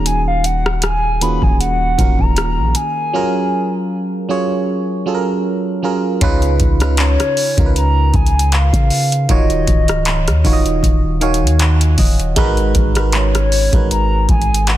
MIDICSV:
0, 0, Header, 1, 5, 480
1, 0, Start_track
1, 0, Tempo, 769231
1, 37, Time_signature, 4, 2, 24, 8
1, 9217, End_track
2, 0, Start_track
2, 0, Title_t, "Soft synth lead"
2, 0, Program_c, 0, 80
2, 41, Note_on_c, 0, 80, 107
2, 169, Note_off_c, 0, 80, 0
2, 173, Note_on_c, 0, 77, 91
2, 284, Note_on_c, 0, 78, 96
2, 293, Note_off_c, 0, 77, 0
2, 518, Note_off_c, 0, 78, 0
2, 522, Note_on_c, 0, 80, 109
2, 763, Note_on_c, 0, 83, 113
2, 772, Note_off_c, 0, 80, 0
2, 892, Note_on_c, 0, 80, 99
2, 902, Note_off_c, 0, 83, 0
2, 998, Note_off_c, 0, 80, 0
2, 1001, Note_on_c, 0, 78, 107
2, 1372, Note_on_c, 0, 82, 108
2, 1381, Note_off_c, 0, 78, 0
2, 1722, Note_on_c, 0, 80, 115
2, 1731, Note_off_c, 0, 82, 0
2, 2679, Note_off_c, 0, 80, 0
2, 4362, Note_on_c, 0, 73, 108
2, 4814, Note_off_c, 0, 73, 0
2, 4843, Note_on_c, 0, 82, 120
2, 5084, Note_on_c, 0, 80, 102
2, 5094, Note_off_c, 0, 82, 0
2, 5326, Note_on_c, 0, 77, 112
2, 5335, Note_off_c, 0, 80, 0
2, 5802, Note_off_c, 0, 77, 0
2, 5806, Note_on_c, 0, 75, 105
2, 6736, Note_off_c, 0, 75, 0
2, 8202, Note_on_c, 0, 73, 102
2, 8654, Note_off_c, 0, 73, 0
2, 8682, Note_on_c, 0, 82, 122
2, 8903, Note_off_c, 0, 82, 0
2, 8923, Note_on_c, 0, 80, 112
2, 9161, Note_on_c, 0, 78, 118
2, 9170, Note_off_c, 0, 80, 0
2, 9217, Note_off_c, 0, 78, 0
2, 9217, End_track
3, 0, Start_track
3, 0, Title_t, "FM electric piano"
3, 0, Program_c, 1, 5
3, 0, Control_c, 1, 64, 127
3, 0, Note_on_c, 1, 51, 72
3, 0, Note_on_c, 1, 58, 67
3, 0, Note_on_c, 1, 61, 65
3, 0, Note_on_c, 1, 63, 65
3, 0, Note_on_c, 1, 66, 69
3, 0, Note_on_c, 1, 68, 81
3, 595, Note_off_c, 1, 51, 0
3, 597, Note_off_c, 1, 58, 0
3, 598, Note_off_c, 1, 61, 0
3, 600, Note_off_c, 1, 63, 0
3, 602, Note_off_c, 1, 66, 0
3, 603, Note_off_c, 1, 68, 0
3, 756, Note_on_c, 1, 51, 73
3, 759, Note_on_c, 1, 58, 68
3, 761, Note_on_c, 1, 61, 68
3, 765, Note_on_c, 1, 65, 68
3, 768, Note_on_c, 1, 66, 66
3, 771, Note_on_c, 1, 68, 76
3, 1160, Note_off_c, 1, 51, 0
3, 1162, Note_off_c, 1, 58, 0
3, 1163, Note_off_c, 1, 61, 0
3, 1165, Note_off_c, 1, 65, 0
3, 1166, Note_off_c, 1, 66, 0
3, 1168, Note_off_c, 1, 68, 0
3, 1236, Note_on_c, 1, 51, 69
3, 1238, Note_on_c, 1, 58, 63
3, 1241, Note_on_c, 1, 61, 62
3, 1244, Note_on_c, 1, 65, 66
3, 1247, Note_on_c, 1, 66, 64
3, 1251, Note_on_c, 1, 70, 77
3, 1841, Note_off_c, 1, 51, 0
3, 1842, Note_off_c, 1, 58, 0
3, 1844, Note_off_c, 1, 61, 0
3, 1845, Note_off_c, 1, 65, 0
3, 1846, Note_off_c, 1, 66, 0
3, 1848, Note_off_c, 1, 70, 0
3, 1956, Note_on_c, 1, 54, 104
3, 1959, Note_on_c, 1, 61, 90
3, 1963, Note_on_c, 1, 65, 89
3, 1966, Control_c, 1, 64, 0
3, 1966, Note_on_c, 1, 68, 86
3, 1971, Note_on_c, 1, 70, 105
3, 2076, Control_c, 1, 64, 127
3, 2561, Note_off_c, 1, 54, 0
3, 2563, Note_off_c, 1, 61, 0
3, 2565, Note_off_c, 1, 65, 0
3, 2566, Note_off_c, 1, 68, 0
3, 2568, Note_off_c, 1, 70, 0
3, 2675, Note_on_c, 1, 54, 87
3, 2679, Note_on_c, 1, 61, 79
3, 2683, Note_on_c, 1, 65, 79
3, 2686, Note_on_c, 1, 68, 84
3, 2689, Note_on_c, 1, 73, 98
3, 3080, Note_off_c, 1, 54, 0
3, 3081, Note_off_c, 1, 61, 0
3, 3083, Note_off_c, 1, 65, 0
3, 3085, Note_off_c, 1, 68, 0
3, 3087, Note_off_c, 1, 73, 0
3, 3156, Note_on_c, 1, 54, 86
3, 3159, Note_on_c, 1, 61, 77
3, 3163, Note_on_c, 1, 65, 77
3, 3167, Note_on_c, 1, 68, 74
3, 3170, Note_on_c, 1, 69, 73
3, 3208, Note_off_c, 1, 69, 0
3, 3211, Note_on_c, 1, 70, 92
3, 3560, Note_off_c, 1, 54, 0
3, 3562, Note_off_c, 1, 61, 0
3, 3563, Note_off_c, 1, 65, 0
3, 3566, Note_off_c, 1, 68, 0
3, 3588, Note_off_c, 1, 70, 0
3, 3635, Note_on_c, 1, 54, 82
3, 3639, Note_on_c, 1, 61, 77
3, 3642, Note_on_c, 1, 65, 80
3, 3646, Note_on_c, 1, 68, 75
3, 3650, Note_on_c, 1, 70, 95
3, 3838, Note_off_c, 1, 54, 0
3, 3840, Note_off_c, 1, 61, 0
3, 3842, Note_off_c, 1, 65, 0
3, 3843, Note_off_c, 1, 68, 0
3, 3845, Note_off_c, 1, 70, 0
3, 3876, Note_on_c, 1, 49, 120
3, 3880, Note_on_c, 1, 61, 115
3, 3884, Note_on_c, 1, 63, 104
3, 3886, Control_c, 1, 64, 0
3, 3887, Note_on_c, 1, 65, 114
3, 3891, Note_on_c, 1, 71, 127
3, 3982, Control_c, 1, 64, 127
3, 4179, Note_off_c, 1, 49, 0
3, 4181, Note_off_c, 1, 61, 0
3, 4183, Note_off_c, 1, 63, 0
3, 4184, Note_off_c, 1, 65, 0
3, 4186, Note_off_c, 1, 71, 0
3, 4245, Note_on_c, 1, 49, 76
3, 4249, Note_on_c, 1, 61, 72
3, 4252, Note_on_c, 1, 63, 73
3, 4257, Note_on_c, 1, 65, 71
3, 4260, Note_on_c, 1, 71, 85
3, 4636, Note_off_c, 1, 49, 0
3, 4638, Note_off_c, 1, 61, 0
3, 4640, Note_off_c, 1, 63, 0
3, 4642, Note_off_c, 1, 65, 0
3, 4644, Note_off_c, 1, 71, 0
3, 4725, Note_on_c, 1, 49, 76
3, 4729, Note_on_c, 1, 61, 72
3, 4733, Note_on_c, 1, 63, 74
3, 4736, Note_on_c, 1, 65, 70
3, 4740, Note_on_c, 1, 70, 72
3, 4771, Note_off_c, 1, 70, 0
3, 4780, Note_on_c, 1, 71, 87
3, 5514, Note_off_c, 1, 49, 0
3, 5516, Note_off_c, 1, 61, 0
3, 5518, Note_off_c, 1, 63, 0
3, 5519, Note_off_c, 1, 65, 0
3, 5541, Note_off_c, 1, 71, 0
3, 5795, Note_on_c, 1, 51, 106
3, 5799, Note_on_c, 1, 63, 94
3, 5803, Note_on_c, 1, 65, 97
3, 5805, Control_c, 1, 64, 0
3, 5807, Note_on_c, 1, 66, 90
3, 5810, Note_on_c, 1, 73, 112
3, 5919, Control_c, 1, 64, 127
3, 6401, Note_off_c, 1, 51, 0
3, 6403, Note_off_c, 1, 63, 0
3, 6405, Note_off_c, 1, 65, 0
3, 6407, Note_off_c, 1, 66, 0
3, 6408, Note_off_c, 1, 73, 0
3, 6515, Note_on_c, 1, 51, 92
3, 6519, Note_on_c, 1, 63, 84
3, 6522, Note_on_c, 1, 65, 84
3, 6526, Note_on_c, 1, 66, 81
3, 6530, Note_on_c, 1, 73, 81
3, 6567, Note_off_c, 1, 73, 0
3, 6570, Note_on_c, 1, 75, 100
3, 6919, Note_off_c, 1, 51, 0
3, 6922, Note_off_c, 1, 63, 0
3, 6923, Note_off_c, 1, 65, 0
3, 6925, Note_off_c, 1, 66, 0
3, 6947, Note_off_c, 1, 75, 0
3, 6994, Note_on_c, 1, 51, 95
3, 6998, Note_on_c, 1, 63, 89
3, 7001, Note_on_c, 1, 77, 85
3, 7002, Note_on_c, 1, 80, 78
3, 7005, Note_on_c, 1, 66, 90
3, 7009, Note_on_c, 1, 73, 102
3, 7223, Note_off_c, 1, 80, 0
3, 7243, Note_on_c, 1, 78, 74
3, 7463, Note_off_c, 1, 78, 0
3, 7482, Note_on_c, 1, 75, 68
3, 7600, Note_off_c, 1, 51, 0
3, 7602, Note_off_c, 1, 63, 0
3, 7604, Note_off_c, 1, 77, 0
3, 7606, Note_off_c, 1, 66, 0
3, 7607, Note_off_c, 1, 73, 0
3, 7703, Note_off_c, 1, 75, 0
3, 7714, Note_on_c, 1, 56, 124
3, 7718, Note_on_c, 1, 63, 114
3, 7721, Note_on_c, 1, 66, 111
3, 7725, Control_c, 1, 64, 0
3, 7726, Note_on_c, 1, 70, 114
3, 7729, Note_on_c, 1, 71, 127
3, 7836, Control_c, 1, 64, 127
3, 8018, Note_off_c, 1, 56, 0
3, 8020, Note_off_c, 1, 63, 0
3, 8021, Note_off_c, 1, 66, 0
3, 8024, Note_off_c, 1, 70, 0
3, 8025, Note_off_c, 1, 71, 0
3, 8083, Note_on_c, 1, 56, 74
3, 8087, Note_on_c, 1, 63, 72
3, 8091, Note_on_c, 1, 66, 71
3, 8094, Note_on_c, 1, 70, 69
3, 8099, Note_on_c, 1, 71, 86
3, 8475, Note_off_c, 1, 56, 0
3, 8477, Note_off_c, 1, 63, 0
3, 8479, Note_off_c, 1, 66, 0
3, 8481, Note_off_c, 1, 70, 0
3, 8483, Note_off_c, 1, 71, 0
3, 8566, Note_on_c, 1, 56, 80
3, 8569, Note_on_c, 1, 63, 71
3, 8573, Note_on_c, 1, 66, 73
3, 8577, Note_on_c, 1, 70, 74
3, 8580, Note_on_c, 1, 71, 83
3, 9217, Note_off_c, 1, 56, 0
3, 9217, Note_off_c, 1, 63, 0
3, 9217, Note_off_c, 1, 66, 0
3, 9217, Note_off_c, 1, 70, 0
3, 9217, Note_off_c, 1, 71, 0
3, 9217, End_track
4, 0, Start_track
4, 0, Title_t, "808-style bass"
4, 0, Program_c, 2, 38
4, 0, Note_on_c, 2, 27, 105
4, 862, Note_off_c, 2, 27, 0
4, 888, Note_on_c, 2, 27, 100
4, 1224, Note_off_c, 2, 27, 0
4, 1239, Note_on_c, 2, 27, 100
4, 1362, Note_off_c, 2, 27, 0
4, 1368, Note_on_c, 2, 27, 108
4, 1610, Note_on_c, 2, 34, 97
4, 1620, Note_off_c, 2, 27, 0
4, 1713, Note_off_c, 2, 34, 0
4, 3879, Note_on_c, 2, 37, 108
4, 4109, Note_off_c, 2, 37, 0
4, 4119, Note_on_c, 2, 37, 103
4, 4473, Note_off_c, 2, 37, 0
4, 4729, Note_on_c, 2, 37, 110
4, 5064, Note_off_c, 2, 37, 0
4, 5079, Note_on_c, 2, 37, 106
4, 5433, Note_off_c, 2, 37, 0
4, 5449, Note_on_c, 2, 49, 107
4, 5784, Note_off_c, 2, 49, 0
4, 5799, Note_on_c, 2, 27, 107
4, 6029, Note_off_c, 2, 27, 0
4, 6039, Note_on_c, 2, 25, 103
4, 6409, Note_on_c, 2, 39, 93
4, 6419, Note_off_c, 2, 25, 0
4, 6513, Note_off_c, 2, 39, 0
4, 6519, Note_on_c, 2, 27, 102
4, 6749, Note_off_c, 2, 27, 0
4, 6759, Note_on_c, 2, 27, 103
4, 7130, Note_on_c, 2, 39, 103
4, 7139, Note_off_c, 2, 27, 0
4, 7461, Note_off_c, 2, 39, 0
4, 7478, Note_on_c, 2, 27, 109
4, 7708, Note_off_c, 2, 27, 0
4, 7718, Note_on_c, 2, 32, 116
4, 7948, Note_off_c, 2, 32, 0
4, 7958, Note_on_c, 2, 32, 108
4, 8543, Note_off_c, 2, 32, 0
4, 8567, Note_on_c, 2, 32, 102
4, 8903, Note_off_c, 2, 32, 0
4, 8918, Note_on_c, 2, 32, 103
4, 9217, Note_off_c, 2, 32, 0
4, 9217, End_track
5, 0, Start_track
5, 0, Title_t, "Drums"
5, 36, Note_on_c, 9, 42, 72
5, 99, Note_off_c, 9, 42, 0
5, 276, Note_on_c, 9, 42, 62
5, 339, Note_off_c, 9, 42, 0
5, 412, Note_on_c, 9, 37, 102
5, 474, Note_off_c, 9, 37, 0
5, 511, Note_on_c, 9, 42, 77
5, 521, Note_on_c, 9, 37, 104
5, 573, Note_off_c, 9, 42, 0
5, 584, Note_off_c, 9, 37, 0
5, 758, Note_on_c, 9, 42, 71
5, 820, Note_off_c, 9, 42, 0
5, 886, Note_on_c, 9, 36, 94
5, 949, Note_off_c, 9, 36, 0
5, 1002, Note_on_c, 9, 42, 69
5, 1064, Note_off_c, 9, 42, 0
5, 1237, Note_on_c, 9, 36, 99
5, 1240, Note_on_c, 9, 42, 61
5, 1299, Note_off_c, 9, 36, 0
5, 1302, Note_off_c, 9, 42, 0
5, 1366, Note_on_c, 9, 36, 92
5, 1429, Note_off_c, 9, 36, 0
5, 1476, Note_on_c, 9, 42, 78
5, 1484, Note_on_c, 9, 37, 117
5, 1538, Note_off_c, 9, 42, 0
5, 1547, Note_off_c, 9, 37, 0
5, 1715, Note_on_c, 9, 42, 76
5, 1777, Note_off_c, 9, 42, 0
5, 3876, Note_on_c, 9, 42, 70
5, 3877, Note_on_c, 9, 36, 100
5, 3939, Note_off_c, 9, 36, 0
5, 3939, Note_off_c, 9, 42, 0
5, 4007, Note_on_c, 9, 42, 51
5, 4069, Note_off_c, 9, 42, 0
5, 4116, Note_on_c, 9, 42, 66
5, 4117, Note_on_c, 9, 36, 101
5, 4178, Note_off_c, 9, 42, 0
5, 4179, Note_off_c, 9, 36, 0
5, 4245, Note_on_c, 9, 42, 61
5, 4253, Note_on_c, 9, 37, 98
5, 4307, Note_off_c, 9, 42, 0
5, 4315, Note_off_c, 9, 37, 0
5, 4352, Note_on_c, 9, 42, 76
5, 4362, Note_on_c, 9, 39, 108
5, 4414, Note_off_c, 9, 42, 0
5, 4424, Note_off_c, 9, 39, 0
5, 4492, Note_on_c, 9, 42, 49
5, 4494, Note_on_c, 9, 37, 68
5, 4554, Note_off_c, 9, 42, 0
5, 4556, Note_off_c, 9, 37, 0
5, 4599, Note_on_c, 9, 46, 54
5, 4661, Note_off_c, 9, 46, 0
5, 4727, Note_on_c, 9, 36, 103
5, 4728, Note_on_c, 9, 42, 55
5, 4789, Note_off_c, 9, 36, 0
5, 4791, Note_off_c, 9, 42, 0
5, 4843, Note_on_c, 9, 42, 73
5, 4905, Note_off_c, 9, 42, 0
5, 5077, Note_on_c, 9, 36, 101
5, 5077, Note_on_c, 9, 42, 38
5, 5139, Note_off_c, 9, 42, 0
5, 5140, Note_off_c, 9, 36, 0
5, 5157, Note_on_c, 9, 42, 51
5, 5220, Note_off_c, 9, 42, 0
5, 5238, Note_on_c, 9, 42, 68
5, 5300, Note_off_c, 9, 42, 0
5, 5317, Note_on_c, 9, 42, 81
5, 5325, Note_on_c, 9, 39, 124
5, 5379, Note_off_c, 9, 42, 0
5, 5388, Note_off_c, 9, 39, 0
5, 5447, Note_on_c, 9, 36, 98
5, 5452, Note_on_c, 9, 42, 70
5, 5510, Note_off_c, 9, 36, 0
5, 5514, Note_off_c, 9, 42, 0
5, 5556, Note_on_c, 9, 46, 76
5, 5619, Note_off_c, 9, 46, 0
5, 5692, Note_on_c, 9, 42, 57
5, 5755, Note_off_c, 9, 42, 0
5, 5797, Note_on_c, 9, 36, 110
5, 5797, Note_on_c, 9, 42, 69
5, 5859, Note_off_c, 9, 42, 0
5, 5860, Note_off_c, 9, 36, 0
5, 5928, Note_on_c, 9, 42, 50
5, 5990, Note_off_c, 9, 42, 0
5, 6037, Note_on_c, 9, 36, 96
5, 6037, Note_on_c, 9, 42, 66
5, 6099, Note_off_c, 9, 42, 0
5, 6100, Note_off_c, 9, 36, 0
5, 6166, Note_on_c, 9, 42, 64
5, 6174, Note_on_c, 9, 37, 101
5, 6228, Note_off_c, 9, 42, 0
5, 6236, Note_off_c, 9, 37, 0
5, 6273, Note_on_c, 9, 42, 75
5, 6283, Note_on_c, 9, 39, 107
5, 6336, Note_off_c, 9, 42, 0
5, 6346, Note_off_c, 9, 39, 0
5, 6412, Note_on_c, 9, 42, 51
5, 6414, Note_on_c, 9, 37, 73
5, 6475, Note_off_c, 9, 42, 0
5, 6477, Note_off_c, 9, 37, 0
5, 6517, Note_on_c, 9, 36, 93
5, 6519, Note_on_c, 9, 46, 54
5, 6580, Note_off_c, 9, 36, 0
5, 6581, Note_off_c, 9, 46, 0
5, 6650, Note_on_c, 9, 42, 56
5, 6712, Note_off_c, 9, 42, 0
5, 6757, Note_on_c, 9, 36, 89
5, 6763, Note_on_c, 9, 42, 72
5, 6819, Note_off_c, 9, 36, 0
5, 6825, Note_off_c, 9, 42, 0
5, 6997, Note_on_c, 9, 42, 37
5, 7060, Note_off_c, 9, 42, 0
5, 7077, Note_on_c, 9, 42, 51
5, 7139, Note_off_c, 9, 42, 0
5, 7157, Note_on_c, 9, 42, 65
5, 7219, Note_off_c, 9, 42, 0
5, 7235, Note_on_c, 9, 42, 81
5, 7244, Note_on_c, 9, 39, 114
5, 7297, Note_off_c, 9, 42, 0
5, 7306, Note_off_c, 9, 39, 0
5, 7369, Note_on_c, 9, 42, 71
5, 7432, Note_off_c, 9, 42, 0
5, 7474, Note_on_c, 9, 46, 83
5, 7476, Note_on_c, 9, 36, 104
5, 7537, Note_off_c, 9, 46, 0
5, 7539, Note_off_c, 9, 36, 0
5, 7610, Note_on_c, 9, 42, 60
5, 7672, Note_off_c, 9, 42, 0
5, 7714, Note_on_c, 9, 42, 73
5, 7716, Note_on_c, 9, 36, 102
5, 7777, Note_off_c, 9, 42, 0
5, 7778, Note_off_c, 9, 36, 0
5, 7845, Note_on_c, 9, 42, 52
5, 7907, Note_off_c, 9, 42, 0
5, 7955, Note_on_c, 9, 42, 63
5, 7956, Note_on_c, 9, 36, 100
5, 8017, Note_off_c, 9, 42, 0
5, 8018, Note_off_c, 9, 36, 0
5, 8083, Note_on_c, 9, 42, 65
5, 8091, Note_on_c, 9, 37, 106
5, 8145, Note_off_c, 9, 42, 0
5, 8153, Note_off_c, 9, 37, 0
5, 8190, Note_on_c, 9, 42, 75
5, 8200, Note_on_c, 9, 39, 115
5, 8252, Note_off_c, 9, 42, 0
5, 8263, Note_off_c, 9, 39, 0
5, 8329, Note_on_c, 9, 42, 52
5, 8331, Note_on_c, 9, 37, 73
5, 8392, Note_off_c, 9, 42, 0
5, 8394, Note_off_c, 9, 37, 0
5, 8436, Note_on_c, 9, 46, 55
5, 8499, Note_off_c, 9, 46, 0
5, 8565, Note_on_c, 9, 36, 97
5, 8566, Note_on_c, 9, 42, 52
5, 8628, Note_off_c, 9, 36, 0
5, 8629, Note_off_c, 9, 42, 0
5, 8680, Note_on_c, 9, 42, 68
5, 8743, Note_off_c, 9, 42, 0
5, 8915, Note_on_c, 9, 42, 38
5, 8916, Note_on_c, 9, 36, 95
5, 8978, Note_off_c, 9, 36, 0
5, 8978, Note_off_c, 9, 42, 0
5, 8995, Note_on_c, 9, 42, 50
5, 9057, Note_off_c, 9, 42, 0
5, 9076, Note_on_c, 9, 42, 64
5, 9138, Note_off_c, 9, 42, 0
5, 9154, Note_on_c, 9, 42, 74
5, 9163, Note_on_c, 9, 39, 123
5, 9217, Note_off_c, 9, 39, 0
5, 9217, Note_off_c, 9, 42, 0
5, 9217, End_track
0, 0, End_of_file